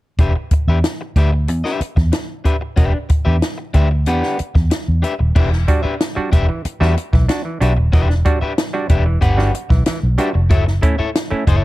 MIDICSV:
0, 0, Header, 1, 7, 480
1, 0, Start_track
1, 0, Tempo, 645161
1, 138, Time_signature, 4, 2, 24, 8
1, 8662, End_track
2, 0, Start_track
2, 0, Title_t, "Clean electric guitar"
2, 0, Program_c, 0, 27
2, 141, Note_on_c, 0, 62, 63
2, 148, Note_on_c, 0, 67, 71
2, 153, Note_on_c, 0, 71, 69
2, 155, Note_on_c, 0, 76, 68
2, 234, Note_off_c, 0, 62, 0
2, 238, Note_off_c, 0, 67, 0
2, 240, Note_off_c, 0, 71, 0
2, 241, Note_off_c, 0, 76, 0
2, 508, Note_on_c, 0, 76, 59
2, 516, Note_on_c, 0, 71, 47
2, 517, Note_on_c, 0, 67, 50
2, 520, Note_on_c, 0, 62, 45
2, 578, Note_off_c, 0, 76, 0
2, 582, Note_off_c, 0, 67, 0
2, 582, Note_off_c, 0, 71, 0
2, 584, Note_off_c, 0, 62, 0
2, 868, Note_on_c, 0, 62, 77
2, 874, Note_on_c, 0, 67, 80
2, 879, Note_on_c, 0, 71, 88
2, 882, Note_on_c, 0, 76, 82
2, 959, Note_off_c, 0, 62, 0
2, 962, Note_off_c, 0, 67, 0
2, 964, Note_off_c, 0, 71, 0
2, 966, Note_off_c, 0, 76, 0
2, 1221, Note_on_c, 0, 76, 67
2, 1226, Note_on_c, 0, 71, 59
2, 1231, Note_on_c, 0, 62, 55
2, 1231, Note_on_c, 0, 67, 59
2, 1337, Note_off_c, 0, 62, 0
2, 1343, Note_off_c, 0, 67, 0
2, 1343, Note_off_c, 0, 71, 0
2, 1345, Note_off_c, 0, 76, 0
2, 1819, Note_on_c, 0, 62, 50
2, 1824, Note_on_c, 0, 67, 59
2, 1828, Note_on_c, 0, 71, 64
2, 1831, Note_on_c, 0, 76, 54
2, 1896, Note_off_c, 0, 62, 0
2, 1898, Note_off_c, 0, 67, 0
2, 1900, Note_off_c, 0, 71, 0
2, 1902, Note_off_c, 0, 76, 0
2, 2056, Note_on_c, 0, 62, 73
2, 2060, Note_on_c, 0, 67, 71
2, 2065, Note_on_c, 0, 71, 80
2, 2067, Note_on_c, 0, 76, 74
2, 2174, Note_off_c, 0, 76, 0
2, 2179, Note_off_c, 0, 71, 0
2, 2183, Note_off_c, 0, 67, 0
2, 2210, Note_off_c, 0, 62, 0
2, 2417, Note_on_c, 0, 76, 58
2, 2421, Note_on_c, 0, 67, 50
2, 2421, Note_on_c, 0, 71, 62
2, 2428, Note_on_c, 0, 62, 51
2, 2495, Note_off_c, 0, 76, 0
2, 2497, Note_off_c, 0, 67, 0
2, 2497, Note_off_c, 0, 71, 0
2, 2501, Note_off_c, 0, 62, 0
2, 2781, Note_on_c, 0, 62, 85
2, 2784, Note_on_c, 0, 67, 91
2, 2789, Note_on_c, 0, 71, 85
2, 2794, Note_on_c, 0, 76, 101
2, 2878, Note_off_c, 0, 62, 0
2, 2880, Note_off_c, 0, 67, 0
2, 2882, Note_off_c, 0, 71, 0
2, 2885, Note_off_c, 0, 76, 0
2, 3029, Note_on_c, 0, 62, 84
2, 3031, Note_on_c, 0, 67, 80
2, 3035, Note_on_c, 0, 71, 90
2, 3038, Note_on_c, 0, 78, 82
2, 3249, Note_off_c, 0, 62, 0
2, 3250, Note_off_c, 0, 67, 0
2, 3252, Note_off_c, 0, 71, 0
2, 3254, Note_off_c, 0, 78, 0
2, 3737, Note_on_c, 0, 62, 54
2, 3741, Note_on_c, 0, 67, 63
2, 3748, Note_on_c, 0, 71, 68
2, 3750, Note_on_c, 0, 76, 72
2, 3816, Note_off_c, 0, 62, 0
2, 3818, Note_off_c, 0, 67, 0
2, 3822, Note_off_c, 0, 71, 0
2, 3823, Note_off_c, 0, 76, 0
2, 3984, Note_on_c, 0, 62, 79
2, 3987, Note_on_c, 0, 67, 85
2, 3991, Note_on_c, 0, 71, 87
2, 3993, Note_on_c, 0, 76, 103
2, 4080, Note_off_c, 0, 62, 0
2, 4082, Note_off_c, 0, 67, 0
2, 4084, Note_off_c, 0, 71, 0
2, 4085, Note_off_c, 0, 76, 0
2, 4337, Note_on_c, 0, 76, 63
2, 4342, Note_on_c, 0, 71, 55
2, 4346, Note_on_c, 0, 67, 53
2, 4351, Note_on_c, 0, 62, 52
2, 4416, Note_off_c, 0, 76, 0
2, 4418, Note_off_c, 0, 71, 0
2, 4421, Note_off_c, 0, 67, 0
2, 4423, Note_off_c, 0, 62, 0
2, 4701, Note_on_c, 0, 62, 84
2, 4706, Note_on_c, 0, 67, 86
2, 4710, Note_on_c, 0, 76, 98
2, 4711, Note_on_c, 0, 71, 97
2, 4798, Note_off_c, 0, 62, 0
2, 4801, Note_off_c, 0, 67, 0
2, 4803, Note_off_c, 0, 71, 0
2, 4803, Note_off_c, 0, 76, 0
2, 5065, Note_on_c, 0, 76, 81
2, 5070, Note_on_c, 0, 71, 73
2, 5075, Note_on_c, 0, 67, 73
2, 5076, Note_on_c, 0, 62, 57
2, 5160, Note_off_c, 0, 76, 0
2, 5162, Note_off_c, 0, 71, 0
2, 5165, Note_off_c, 0, 62, 0
2, 5165, Note_off_c, 0, 67, 0
2, 5666, Note_on_c, 0, 62, 54
2, 5669, Note_on_c, 0, 67, 60
2, 5673, Note_on_c, 0, 71, 67
2, 5678, Note_on_c, 0, 76, 70
2, 5739, Note_off_c, 0, 62, 0
2, 5741, Note_off_c, 0, 67, 0
2, 5743, Note_off_c, 0, 71, 0
2, 5746, Note_off_c, 0, 76, 0
2, 5896, Note_on_c, 0, 62, 85
2, 5901, Note_on_c, 0, 67, 83
2, 5904, Note_on_c, 0, 71, 85
2, 5909, Note_on_c, 0, 76, 97
2, 6014, Note_off_c, 0, 76, 0
2, 6018, Note_off_c, 0, 71, 0
2, 6023, Note_off_c, 0, 67, 0
2, 6049, Note_off_c, 0, 62, 0
2, 6260, Note_on_c, 0, 76, 57
2, 6267, Note_on_c, 0, 71, 62
2, 6273, Note_on_c, 0, 67, 55
2, 6275, Note_on_c, 0, 62, 55
2, 6336, Note_off_c, 0, 76, 0
2, 6339, Note_off_c, 0, 71, 0
2, 6342, Note_off_c, 0, 67, 0
2, 6343, Note_off_c, 0, 62, 0
2, 6620, Note_on_c, 0, 62, 81
2, 6623, Note_on_c, 0, 67, 88
2, 6627, Note_on_c, 0, 71, 81
2, 6629, Note_on_c, 0, 76, 81
2, 6716, Note_off_c, 0, 62, 0
2, 6717, Note_off_c, 0, 67, 0
2, 6719, Note_off_c, 0, 71, 0
2, 6720, Note_off_c, 0, 76, 0
2, 6854, Note_on_c, 0, 62, 78
2, 6856, Note_on_c, 0, 67, 86
2, 6859, Note_on_c, 0, 71, 84
2, 6864, Note_on_c, 0, 78, 90
2, 7078, Note_off_c, 0, 62, 0
2, 7079, Note_off_c, 0, 67, 0
2, 7081, Note_off_c, 0, 71, 0
2, 7083, Note_off_c, 0, 78, 0
2, 7575, Note_on_c, 0, 62, 63
2, 7578, Note_on_c, 0, 67, 64
2, 7586, Note_on_c, 0, 71, 67
2, 7588, Note_on_c, 0, 76, 65
2, 7651, Note_off_c, 0, 62, 0
2, 7653, Note_off_c, 0, 67, 0
2, 7657, Note_off_c, 0, 71, 0
2, 7657, Note_off_c, 0, 76, 0
2, 7811, Note_on_c, 0, 64, 71
2, 7816, Note_on_c, 0, 69, 87
2, 7820, Note_on_c, 0, 73, 84
2, 7822, Note_on_c, 0, 76, 98
2, 7909, Note_off_c, 0, 64, 0
2, 7911, Note_off_c, 0, 69, 0
2, 7914, Note_off_c, 0, 73, 0
2, 7915, Note_off_c, 0, 76, 0
2, 8174, Note_on_c, 0, 76, 64
2, 8177, Note_on_c, 0, 73, 59
2, 8178, Note_on_c, 0, 69, 56
2, 8183, Note_on_c, 0, 64, 52
2, 8249, Note_off_c, 0, 76, 0
2, 8251, Note_off_c, 0, 69, 0
2, 8251, Note_off_c, 0, 73, 0
2, 8254, Note_off_c, 0, 64, 0
2, 8536, Note_on_c, 0, 64, 83
2, 8539, Note_on_c, 0, 69, 72
2, 8543, Note_on_c, 0, 73, 96
2, 8549, Note_on_c, 0, 76, 81
2, 8649, Note_off_c, 0, 76, 0
2, 8654, Note_off_c, 0, 73, 0
2, 8658, Note_off_c, 0, 69, 0
2, 8662, Note_off_c, 0, 64, 0
2, 8662, End_track
3, 0, Start_track
3, 0, Title_t, "Clav"
3, 0, Program_c, 1, 7
3, 3990, Note_on_c, 1, 52, 53
3, 4086, Note_off_c, 1, 52, 0
3, 4225, Note_on_c, 1, 55, 92
3, 4227, Note_on_c, 1, 62, 75
3, 4230, Note_on_c, 1, 66, 92
3, 4323, Note_off_c, 1, 55, 0
3, 4325, Note_off_c, 1, 62, 0
3, 4326, Note_off_c, 1, 66, 0
3, 4347, Note_on_c, 1, 66, 43
3, 4348, Note_on_c, 1, 62, 40
3, 4396, Note_off_c, 1, 62, 0
3, 4396, Note_off_c, 1, 66, 0
3, 4585, Note_on_c, 1, 55, 75
3, 4587, Note_on_c, 1, 62, 67
3, 4589, Note_on_c, 1, 66, 89
3, 4683, Note_off_c, 1, 55, 0
3, 4684, Note_off_c, 1, 62, 0
3, 4685, Note_off_c, 1, 66, 0
3, 4825, Note_on_c, 1, 52, 54
3, 4923, Note_off_c, 1, 52, 0
3, 5061, Note_on_c, 1, 55, 72
3, 5062, Note_on_c, 1, 62, 62
3, 5064, Note_on_c, 1, 66, 80
3, 5161, Note_off_c, 1, 55, 0
3, 5162, Note_off_c, 1, 62, 0
3, 5162, Note_off_c, 1, 66, 0
3, 5302, Note_on_c, 1, 52, 57
3, 5401, Note_off_c, 1, 52, 0
3, 5420, Note_on_c, 1, 62, 69
3, 5425, Note_on_c, 1, 66, 71
3, 5520, Note_off_c, 1, 62, 0
3, 5522, Note_off_c, 1, 66, 0
3, 5542, Note_on_c, 1, 52, 54
3, 5641, Note_off_c, 1, 52, 0
3, 5658, Note_on_c, 1, 62, 71
3, 5663, Note_on_c, 1, 66, 82
3, 5759, Note_off_c, 1, 62, 0
3, 5761, Note_off_c, 1, 66, 0
3, 5902, Note_on_c, 1, 52, 56
3, 6001, Note_off_c, 1, 52, 0
3, 6138, Note_on_c, 1, 55, 82
3, 6142, Note_on_c, 1, 62, 81
3, 6143, Note_on_c, 1, 66, 106
3, 6238, Note_off_c, 1, 55, 0
3, 6240, Note_off_c, 1, 62, 0
3, 6241, Note_off_c, 1, 66, 0
3, 6263, Note_on_c, 1, 66, 46
3, 6264, Note_on_c, 1, 62, 37
3, 6312, Note_off_c, 1, 62, 0
3, 6312, Note_off_c, 1, 66, 0
3, 6498, Note_on_c, 1, 55, 70
3, 6501, Note_on_c, 1, 62, 68
3, 6503, Note_on_c, 1, 66, 74
3, 6597, Note_off_c, 1, 55, 0
3, 6599, Note_off_c, 1, 62, 0
3, 6600, Note_off_c, 1, 66, 0
3, 6738, Note_on_c, 1, 52, 58
3, 6837, Note_off_c, 1, 52, 0
3, 6974, Note_on_c, 1, 55, 79
3, 6977, Note_on_c, 1, 62, 60
3, 6979, Note_on_c, 1, 66, 85
3, 7075, Note_off_c, 1, 55, 0
3, 7076, Note_off_c, 1, 62, 0
3, 7077, Note_off_c, 1, 66, 0
3, 7219, Note_on_c, 1, 52, 59
3, 7317, Note_off_c, 1, 52, 0
3, 7339, Note_on_c, 1, 52, 68
3, 7437, Note_off_c, 1, 52, 0
3, 7573, Note_on_c, 1, 55, 81
3, 7575, Note_on_c, 1, 62, 76
3, 7577, Note_on_c, 1, 66, 93
3, 7673, Note_off_c, 1, 55, 0
3, 7674, Note_off_c, 1, 62, 0
3, 7675, Note_off_c, 1, 66, 0
3, 7696, Note_on_c, 1, 66, 43
3, 7697, Note_on_c, 1, 62, 40
3, 7746, Note_off_c, 1, 62, 0
3, 7746, Note_off_c, 1, 66, 0
3, 7817, Note_on_c, 1, 54, 52
3, 7915, Note_off_c, 1, 54, 0
3, 8053, Note_on_c, 1, 57, 86
3, 8055, Note_on_c, 1, 61, 80
3, 8056, Note_on_c, 1, 64, 98
3, 8152, Note_off_c, 1, 57, 0
3, 8153, Note_off_c, 1, 61, 0
3, 8154, Note_off_c, 1, 64, 0
3, 8176, Note_on_c, 1, 61, 37
3, 8177, Note_on_c, 1, 64, 43
3, 8225, Note_off_c, 1, 61, 0
3, 8225, Note_off_c, 1, 64, 0
3, 8411, Note_on_c, 1, 57, 75
3, 8414, Note_on_c, 1, 61, 64
3, 8416, Note_on_c, 1, 64, 81
3, 8511, Note_off_c, 1, 57, 0
3, 8512, Note_off_c, 1, 61, 0
3, 8513, Note_off_c, 1, 64, 0
3, 8662, End_track
4, 0, Start_track
4, 0, Title_t, "Fingered electric bass"
4, 0, Program_c, 2, 33
4, 141, Note_on_c, 2, 28, 96
4, 244, Note_off_c, 2, 28, 0
4, 503, Note_on_c, 2, 40, 92
4, 605, Note_off_c, 2, 40, 0
4, 863, Note_on_c, 2, 38, 73
4, 1104, Note_off_c, 2, 38, 0
4, 1104, Note_on_c, 2, 40, 90
4, 1207, Note_off_c, 2, 40, 0
4, 1466, Note_on_c, 2, 40, 91
4, 1569, Note_off_c, 2, 40, 0
4, 2067, Note_on_c, 2, 28, 90
4, 2170, Note_off_c, 2, 28, 0
4, 2429, Note_on_c, 2, 40, 83
4, 2531, Note_off_c, 2, 40, 0
4, 2788, Note_on_c, 2, 38, 82
4, 3029, Note_off_c, 2, 38, 0
4, 3029, Note_on_c, 2, 40, 98
4, 3132, Note_off_c, 2, 40, 0
4, 3389, Note_on_c, 2, 40, 74
4, 3492, Note_off_c, 2, 40, 0
4, 3633, Note_on_c, 2, 40, 80
4, 3734, Note_off_c, 2, 40, 0
4, 3870, Note_on_c, 2, 27, 83
4, 3973, Note_off_c, 2, 27, 0
4, 3989, Note_on_c, 2, 28, 103
4, 4196, Note_off_c, 2, 28, 0
4, 4709, Note_on_c, 2, 28, 88
4, 4812, Note_off_c, 2, 28, 0
4, 5066, Note_on_c, 2, 40, 101
4, 5170, Note_off_c, 2, 40, 0
4, 5308, Note_on_c, 2, 35, 79
4, 5411, Note_off_c, 2, 35, 0
4, 5663, Note_on_c, 2, 35, 90
4, 5768, Note_off_c, 2, 35, 0
4, 5785, Note_on_c, 2, 27, 81
4, 5888, Note_off_c, 2, 27, 0
4, 5904, Note_on_c, 2, 28, 110
4, 6111, Note_off_c, 2, 28, 0
4, 6622, Note_on_c, 2, 28, 90
4, 6829, Note_off_c, 2, 28, 0
4, 6862, Note_on_c, 2, 31, 91
4, 7069, Note_off_c, 2, 31, 0
4, 7220, Note_on_c, 2, 35, 87
4, 7324, Note_off_c, 2, 35, 0
4, 7464, Note_on_c, 2, 35, 90
4, 7566, Note_off_c, 2, 35, 0
4, 7701, Note_on_c, 2, 29, 84
4, 7818, Note_off_c, 2, 29, 0
4, 7818, Note_on_c, 2, 30, 100
4, 8025, Note_off_c, 2, 30, 0
4, 8536, Note_on_c, 2, 30, 88
4, 8640, Note_off_c, 2, 30, 0
4, 8662, End_track
5, 0, Start_track
5, 0, Title_t, "Muted clean electric guitar strokes"
5, 264, Note_on_c, 9, 29, 48
5, 339, Note_off_c, 9, 29, 0
5, 394, Note_on_c, 9, 29, 30
5, 468, Note_off_c, 9, 29, 0
5, 750, Note_on_c, 9, 29, 44
5, 825, Note_off_c, 9, 29, 0
5, 986, Note_on_c, 9, 29, 48
5, 1060, Note_off_c, 9, 29, 0
5, 1103, Note_on_c, 9, 29, 33
5, 1178, Note_off_c, 9, 29, 0
5, 1346, Note_on_c, 9, 29, 36
5, 1420, Note_off_c, 9, 29, 0
5, 1460, Note_on_c, 9, 29, 42
5, 1535, Note_off_c, 9, 29, 0
5, 1579, Note_on_c, 9, 29, 44
5, 1654, Note_off_c, 9, 29, 0
5, 1943, Note_on_c, 9, 29, 47
5, 2017, Note_off_c, 9, 29, 0
5, 2183, Note_on_c, 9, 29, 31
5, 2257, Note_off_c, 9, 29, 0
5, 2301, Note_on_c, 9, 29, 37
5, 2375, Note_off_c, 9, 29, 0
5, 2661, Note_on_c, 9, 29, 43
5, 2736, Note_off_c, 9, 29, 0
5, 2915, Note_on_c, 9, 29, 32
5, 2989, Note_off_c, 9, 29, 0
5, 3261, Note_on_c, 9, 29, 43
5, 3335, Note_off_c, 9, 29, 0
5, 3384, Note_on_c, 9, 29, 52
5, 3458, Note_off_c, 9, 29, 0
5, 3501, Note_on_c, 9, 29, 38
5, 3575, Note_off_c, 9, 29, 0
5, 3864, Note_on_c, 9, 29, 39
5, 3938, Note_off_c, 9, 29, 0
5, 4100, Note_on_c, 9, 29, 40
5, 4174, Note_off_c, 9, 29, 0
5, 4222, Note_on_c, 9, 29, 34
5, 4297, Note_off_c, 9, 29, 0
5, 4578, Note_on_c, 9, 29, 42
5, 4652, Note_off_c, 9, 29, 0
5, 4826, Note_on_c, 9, 29, 51
5, 4901, Note_off_c, 9, 29, 0
5, 4949, Note_on_c, 9, 29, 41
5, 5023, Note_off_c, 9, 29, 0
5, 5187, Note_on_c, 9, 29, 38
5, 5261, Note_off_c, 9, 29, 0
5, 5312, Note_on_c, 9, 29, 47
5, 5386, Note_off_c, 9, 29, 0
5, 5428, Note_on_c, 9, 29, 41
5, 5502, Note_off_c, 9, 29, 0
5, 5778, Note_on_c, 9, 29, 41
5, 5853, Note_off_c, 9, 29, 0
5, 6023, Note_on_c, 9, 29, 36
5, 6098, Note_off_c, 9, 29, 0
5, 6140, Note_on_c, 9, 29, 31
5, 6214, Note_off_c, 9, 29, 0
5, 6501, Note_on_c, 9, 29, 45
5, 6575, Note_off_c, 9, 29, 0
5, 6740, Note_on_c, 9, 29, 46
5, 6814, Note_off_c, 9, 29, 0
5, 7099, Note_on_c, 9, 29, 39
5, 7174, Note_off_c, 9, 29, 0
5, 7214, Note_on_c, 9, 29, 43
5, 7288, Note_off_c, 9, 29, 0
5, 7338, Note_on_c, 9, 29, 44
5, 7413, Note_off_c, 9, 29, 0
5, 7695, Note_on_c, 9, 29, 39
5, 7769, Note_off_c, 9, 29, 0
5, 7933, Note_on_c, 9, 29, 38
5, 8007, Note_off_c, 9, 29, 0
5, 8046, Note_on_c, 9, 29, 31
5, 8120, Note_off_c, 9, 29, 0
5, 8418, Note_on_c, 9, 29, 53
5, 8493, Note_off_c, 9, 29, 0
5, 8662, End_track
6, 0, Start_track
6, 0, Title_t, "Muted fingered electric bass strokes"
6, 382, Note_on_c, 9, 29, 46
6, 457, Note_off_c, 9, 29, 0
6, 1343, Note_on_c, 9, 29, 47
6, 1418, Note_off_c, 9, 29, 0
6, 2308, Note_on_c, 9, 29, 42
6, 2382, Note_off_c, 9, 29, 0
6, 3274, Note_on_c, 9, 29, 46
6, 3348, Note_off_c, 9, 29, 0
6, 4349, Note_on_c, 9, 29, 51
6, 4424, Note_off_c, 9, 29, 0
6, 4591, Note_on_c, 9, 29, 40
6, 4665, Note_off_c, 9, 29, 0
6, 4948, Note_on_c, 9, 29, 50
6, 5023, Note_off_c, 9, 29, 0
6, 6264, Note_on_c, 9, 29, 46
6, 6339, Note_off_c, 9, 29, 0
6, 8180, Note_on_c, 9, 29, 52
6, 8254, Note_off_c, 9, 29, 0
6, 8419, Note_on_c, 9, 29, 47
6, 8494, Note_off_c, 9, 29, 0
6, 8662, End_track
7, 0, Start_track
7, 0, Title_t, "Drums"
7, 138, Note_on_c, 9, 42, 71
7, 139, Note_on_c, 9, 36, 98
7, 212, Note_off_c, 9, 42, 0
7, 214, Note_off_c, 9, 36, 0
7, 379, Note_on_c, 9, 42, 66
7, 382, Note_on_c, 9, 36, 88
7, 453, Note_off_c, 9, 42, 0
7, 456, Note_off_c, 9, 36, 0
7, 625, Note_on_c, 9, 38, 107
7, 625, Note_on_c, 9, 42, 95
7, 699, Note_off_c, 9, 42, 0
7, 700, Note_off_c, 9, 38, 0
7, 862, Note_on_c, 9, 36, 81
7, 863, Note_on_c, 9, 42, 58
7, 937, Note_off_c, 9, 36, 0
7, 937, Note_off_c, 9, 42, 0
7, 1103, Note_on_c, 9, 42, 77
7, 1177, Note_off_c, 9, 42, 0
7, 1230, Note_on_c, 9, 38, 40
7, 1304, Note_off_c, 9, 38, 0
7, 1346, Note_on_c, 9, 42, 72
7, 1420, Note_off_c, 9, 42, 0
7, 1465, Note_on_c, 9, 36, 68
7, 1469, Note_on_c, 9, 38, 28
7, 1539, Note_off_c, 9, 36, 0
7, 1543, Note_off_c, 9, 38, 0
7, 1581, Note_on_c, 9, 42, 104
7, 1585, Note_on_c, 9, 38, 119
7, 1656, Note_off_c, 9, 42, 0
7, 1660, Note_off_c, 9, 38, 0
7, 1825, Note_on_c, 9, 36, 73
7, 1826, Note_on_c, 9, 42, 60
7, 1900, Note_off_c, 9, 36, 0
7, 1901, Note_off_c, 9, 42, 0
7, 2062, Note_on_c, 9, 42, 68
7, 2065, Note_on_c, 9, 36, 100
7, 2137, Note_off_c, 9, 42, 0
7, 2139, Note_off_c, 9, 36, 0
7, 2303, Note_on_c, 9, 42, 76
7, 2307, Note_on_c, 9, 36, 91
7, 2377, Note_off_c, 9, 42, 0
7, 2381, Note_off_c, 9, 36, 0
7, 2546, Note_on_c, 9, 42, 87
7, 2547, Note_on_c, 9, 38, 111
7, 2621, Note_off_c, 9, 38, 0
7, 2621, Note_off_c, 9, 42, 0
7, 2783, Note_on_c, 9, 42, 59
7, 2786, Note_on_c, 9, 36, 75
7, 2857, Note_off_c, 9, 42, 0
7, 2860, Note_off_c, 9, 36, 0
7, 3021, Note_on_c, 9, 42, 74
7, 3096, Note_off_c, 9, 42, 0
7, 3148, Note_on_c, 9, 38, 39
7, 3222, Note_off_c, 9, 38, 0
7, 3266, Note_on_c, 9, 42, 71
7, 3340, Note_off_c, 9, 42, 0
7, 3388, Note_on_c, 9, 36, 74
7, 3390, Note_on_c, 9, 38, 27
7, 3462, Note_off_c, 9, 36, 0
7, 3464, Note_off_c, 9, 38, 0
7, 3505, Note_on_c, 9, 42, 115
7, 3509, Note_on_c, 9, 38, 119
7, 3579, Note_off_c, 9, 42, 0
7, 3583, Note_off_c, 9, 38, 0
7, 3747, Note_on_c, 9, 42, 61
7, 3822, Note_off_c, 9, 42, 0
7, 3987, Note_on_c, 9, 36, 113
7, 3988, Note_on_c, 9, 49, 79
7, 4062, Note_off_c, 9, 36, 0
7, 4062, Note_off_c, 9, 49, 0
7, 4112, Note_on_c, 9, 38, 34
7, 4187, Note_off_c, 9, 38, 0
7, 4227, Note_on_c, 9, 42, 67
7, 4229, Note_on_c, 9, 36, 91
7, 4301, Note_off_c, 9, 42, 0
7, 4303, Note_off_c, 9, 36, 0
7, 4468, Note_on_c, 9, 42, 97
7, 4469, Note_on_c, 9, 38, 121
7, 4543, Note_off_c, 9, 38, 0
7, 4543, Note_off_c, 9, 42, 0
7, 4707, Note_on_c, 9, 36, 88
7, 4707, Note_on_c, 9, 42, 67
7, 4781, Note_off_c, 9, 36, 0
7, 4782, Note_off_c, 9, 42, 0
7, 4947, Note_on_c, 9, 42, 75
7, 5021, Note_off_c, 9, 42, 0
7, 5074, Note_on_c, 9, 38, 39
7, 5149, Note_off_c, 9, 38, 0
7, 5190, Note_on_c, 9, 42, 75
7, 5264, Note_off_c, 9, 42, 0
7, 5307, Note_on_c, 9, 36, 81
7, 5311, Note_on_c, 9, 38, 31
7, 5381, Note_off_c, 9, 36, 0
7, 5386, Note_off_c, 9, 38, 0
7, 5424, Note_on_c, 9, 42, 117
7, 5428, Note_on_c, 9, 38, 117
7, 5498, Note_off_c, 9, 42, 0
7, 5503, Note_off_c, 9, 38, 0
7, 5665, Note_on_c, 9, 42, 59
7, 5739, Note_off_c, 9, 42, 0
7, 5903, Note_on_c, 9, 36, 117
7, 5903, Note_on_c, 9, 42, 74
7, 5978, Note_off_c, 9, 36, 0
7, 5978, Note_off_c, 9, 42, 0
7, 6027, Note_on_c, 9, 38, 33
7, 6101, Note_off_c, 9, 38, 0
7, 6142, Note_on_c, 9, 42, 73
7, 6144, Note_on_c, 9, 36, 89
7, 6216, Note_off_c, 9, 42, 0
7, 6218, Note_off_c, 9, 36, 0
7, 6384, Note_on_c, 9, 38, 114
7, 6384, Note_on_c, 9, 42, 102
7, 6458, Note_off_c, 9, 42, 0
7, 6459, Note_off_c, 9, 38, 0
7, 6618, Note_on_c, 9, 42, 63
7, 6620, Note_on_c, 9, 36, 88
7, 6693, Note_off_c, 9, 42, 0
7, 6695, Note_off_c, 9, 36, 0
7, 6859, Note_on_c, 9, 42, 79
7, 6860, Note_on_c, 9, 36, 76
7, 6934, Note_off_c, 9, 42, 0
7, 6935, Note_off_c, 9, 36, 0
7, 6984, Note_on_c, 9, 38, 40
7, 7058, Note_off_c, 9, 38, 0
7, 7103, Note_on_c, 9, 42, 68
7, 7177, Note_off_c, 9, 42, 0
7, 7220, Note_on_c, 9, 36, 86
7, 7224, Note_on_c, 9, 38, 29
7, 7294, Note_off_c, 9, 36, 0
7, 7298, Note_off_c, 9, 38, 0
7, 7335, Note_on_c, 9, 42, 109
7, 7339, Note_on_c, 9, 38, 118
7, 7409, Note_off_c, 9, 42, 0
7, 7413, Note_off_c, 9, 38, 0
7, 7575, Note_on_c, 9, 42, 62
7, 7650, Note_off_c, 9, 42, 0
7, 7815, Note_on_c, 9, 42, 69
7, 7817, Note_on_c, 9, 36, 108
7, 7890, Note_off_c, 9, 42, 0
7, 7891, Note_off_c, 9, 36, 0
7, 7943, Note_on_c, 9, 38, 38
7, 8018, Note_off_c, 9, 38, 0
7, 8057, Note_on_c, 9, 42, 65
7, 8059, Note_on_c, 9, 36, 97
7, 8131, Note_off_c, 9, 42, 0
7, 8133, Note_off_c, 9, 36, 0
7, 8299, Note_on_c, 9, 42, 107
7, 8300, Note_on_c, 9, 38, 119
7, 8374, Note_off_c, 9, 38, 0
7, 8374, Note_off_c, 9, 42, 0
7, 8535, Note_on_c, 9, 42, 71
7, 8536, Note_on_c, 9, 36, 86
7, 8610, Note_off_c, 9, 36, 0
7, 8610, Note_off_c, 9, 42, 0
7, 8662, End_track
0, 0, End_of_file